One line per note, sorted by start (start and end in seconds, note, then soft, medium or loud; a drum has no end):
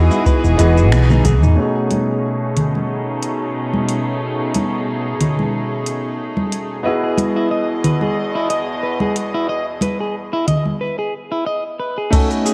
0.00 1.55 E3 medium
0.00 0.57 B3 medium
0.00 1.58 D#4 medium
0.00 1.59 E4 medium
0.00 0.60 F#4 medium
0.00 1.55 F#4 medium
0.00 0.61 G#4 medium
0.00 1.55 G#4 medium
0.00 0.58 D#5 medium
0.00 1.54 D#5 medium
0.11 0.25 E4 loud
0.11 high conga medium
0.11 shaker soft
0.26 0.42 B4 loud
0.26 kick loud
0.26 shaker soft
0.44 0.57 E1 medium
0.44 shaker soft
0.57 0.92 E1 medium
0.57 1.54 E3 medium
0.57 1.53 B3 medium
0.57 1.55 F#4 medium
0.57 0.76 B4 medium
0.57 1.54 D#5 medium
0.57 closed hi-hat medium
0.57 shaker medium
0.61 1.55 G#4 medium
0.77 0.90 F#4 medium
0.77 shaker soft
0.92 1.20 B1 loud
0.92 finger snap loud
0.92 high tom medium
0.92 shaker soft
1.09 1.24 D#4 medium
1.09 high tom medium
1.09 high conga medium
1.09 low conga medium
1.09 shaker soft
1.25 1.43 B1 medium
1.25 1.41 G#4 medium
1.25 kick medium
1.25 closed hi-hat medium
1.25 mid tom medium
1.25 shaker medium
1.43 1.55 E2 medium
1.43 1.57 D#4 medium
1.43 mid tom medium
1.43 shaker soft
1.56 6.81 B2 medium
1.56 6.81 A3 medium
1.56 6.81 C#4 medium
1.56 6.81 D#4 medium
1.56 6.82 D#4 medium
1.56 6.82 F#4 medium
1.56 10.77 G#4 medium
1.60 6.83 G#4 medium
1.91 closed hi-hat medium
1.91 high conga medium
2.57 closed hi-hat medium
2.57 low conga medium
2.75 high conga medium
3.23 closed hi-hat medium
3.74 high conga medium
3.89 closed hi-hat medium
4.54 closed hi-hat medium
4.54 high conga medium
5.21 closed hi-hat medium
5.21 low conga medium
5.39 high conga medium
5.86 closed hi-hat medium
6.37 high conga medium
6.52 closed hi-hat medium
6.83 10.77 E2 medium
6.83 10.77 B2 medium
6.83 10.80 B3 medium
6.83 10.81 E4 medium
6.83 10.81 F#4 medium
6.83 7.03 B4 medium
6.83 10.80 D#5 medium
6.83 10.77 D#5 medium
6.87 10.82 G#4 medium
7.04 7.18 G#4 medium
7.18 closed hi-hat medium
7.18 high conga medium
7.36 7.50 E4 medium
7.51 7.67 D#5 medium
7.84 8.01 B4 medium
7.84 closed hi-hat medium
7.84 low conga medium
8.01 8.16 G#4 medium
8.01 high conga medium
8.35 8.49 E4 medium
8.50 8.66 D#5 medium
8.50 closed hi-hat medium
8.83 9.00 B4 medium
9.00 9.15 G#4 medium
9.00 high conga medium
9.16 closed hi-hat medium
9.34 9.48 E4 medium
9.49 9.65 D#5 medium
9.81 9.99 B4 medium
9.81 closed hi-hat medium
9.81 high conga medium
10.00 10.15 G#4 medium
10.33 10.47 E4 medium
10.48 10.64 D#5 medium
10.48 closed hi-hat medium
10.48 low conga medium
10.65 high conga medium
10.81 10.98 B4 medium
10.99 11.13 G#4 medium
11.32 11.45 E4 medium
11.46 11.63 D#5 medium
11.80 11.97 B4 medium
11.98 12.12 G#4 medium
12.10 12.54 A3 medium
12.10 12.54 B3 medium
12.10 12.54 C#4 medium
12.10 12.54 D#4 medium
12.10 12.54 F#4 medium
12.10 12.29 A4 medium
12.10 12.54 D#5 medium
12.10 kick loud
12.10 closed hi-hat medium
12.10 crash medium
12.10 shaker soft
12.15 12.54 G#5 medium
12.31 closed hi-hat soft
12.31 shaker soft
12.46 12.54 G#4 medium
12.46 shaker medium